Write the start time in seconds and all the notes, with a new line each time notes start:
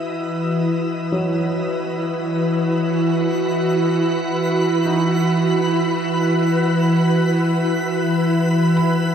Already playing: E3 F#4 B4 D#5 D#6
1.12 F#3
1.73 E3 B4 B5
1.99 F#4
3.21 B4
3.59 B5
4.86 D#4
8.50 G#4
8.77 B5